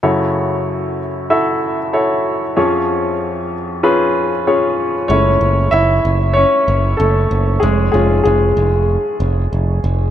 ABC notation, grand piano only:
X:1
M:4/4
L:1/16
Q:1/4=95
K:F#m
V:1 name="Grand piano"
[EFAc]6 z2 [EFAe]3 z [EFAc]3 z | [C^EGc]6 z2 [CEGB]3 z [CEGc]3 z | [Cc]4 [Ee]4 [Cc]4 [A,A]4 | [G,G]2 G2 [G,G]8- [G,G]2 z2 |]
V:2 name="Grand piano" clef=bass
[F,,C,]16 | [^E,,^E,]16 | [G,A,E]6 z8 z2 | z2 [G,C^E]2 z12 |]